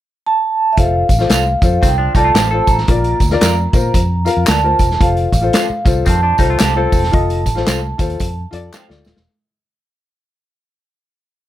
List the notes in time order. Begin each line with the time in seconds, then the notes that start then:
0.26 A5
0.73 E5
0.77 F1 F4 A4 C5 F5, kick, closed hi-hat, tambourine
1.09 A1, kick, closed hi-hat, tambourine
1.19 F4 A4 C5, snare
1.29 C2 A4 C5 F5, snare, clap, closed hi-hat, tambourine
1.62 F2 F4 A4 C5, kick, closed hi-hat, tambourine
1.82 C2 D#3 C4 G5, kick, closed hi-hat, tambourine
1.98 F3 D4
2.15 C2 G3 D#4 F4 A4 D5 A5, kick, closed hi-hat, tambourine
2.24 A3 F4
2.34 A1 G4 A4 C5 F5, snare, clap, closed hi-hat, tambourine
2.51 C4 F4 A4 C5
2.67 A1 A#5, kick, closed hi-hat, tambourine
2.78 snare
2.88 A#1 A#2 F4 A#4 D5, kick, closed hi-hat, tambourine
3.04 closed hi-hat
3.20 D2, kick, closed hi-hat, tambourine
3.30 F4 A#4 D5, snare
3.41 F2 A#4 D5 F5, snare, clap, closed hi-hat, tambourine
3.73 A#2 F4 A#4 C5, kick, closed hi-hat, tambourine
3.94 F2, kick, closed hi-hat, tambourine
4.25 F4 A#4 F5, closed hi-hat, tambourine
4.37 F2
4.47 D2 A#4 D5 F5 A5, snare, clap, closed hi-hat, tambourine
4.63 F4 A#4 C5
4.79 E1, kick, closed hi-hat, tambourine
4.91 snare
5.00 F1 F4 A4 C5 F5, kick, closed hi-hat, tambourine
5.17 closed hi-hat
5.32 A1, kick, closed hi-hat, tambourine
5.41 F4 A4 C5
5.53 A4 C5 F5, snare, clap, closed hi-hat, tambourine
5.70 muted fingered electric bass stroke
5.85 C2 F4 A4 C5, kick, closed hi-hat, tambourine
6.06 F2 D#3 C4 A5, kick, closed hi-hat, tambourine
6.23 F3 D4
6.38 C2 G3 D#4 F4 A4 C5, kick, closed hi-hat, tambourine
6.50 A3 F4
6.60 C2 G4 A4 C5 F5, snare, clap, closed hi-hat, tambourine
6.75 C4 F4 A4 C5
6.92 E1, kick, open hi-hat, tambourine
7.03 snare
7.12 F1 F4 A4 D#5, kick, closed hi-hat
7.30 closed hi-hat
7.46 A1, kick, closed hi-hat, tambourine
7.55 F4 A4 C5, snare
7.66 C2 A4 C5 F5, snare, clap, closed hi-hat, tambourine
7.98 D#2 F4 A4 C5, kick, closed hi-hat, tambourine
8.10 closed hi-hat
8.20 F2, kick, closed hi-hat, tambourine
8.51 F2 F4 A4 D5, closed hi-hat
8.73 A4 C5 F5 G5, snare, clap, tambourine
8.87 D2 F4 A4 D5, snare
9.05 D#1 F5, snare, tambourine
9.17 E1, snare